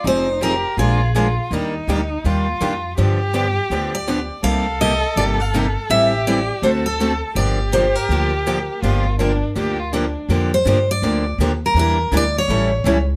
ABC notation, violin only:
X:1
M:4/4
L:1/8
Q:"Swing" 1/4=164
K:Gm
V:1 name="Violin"
E2 G2 F2 F2 | E4 F4 | G6- G z | A8 |
G4 A4 | G8 | F2 D2 G F D2 | [K:Bb] z8 |
z8 |]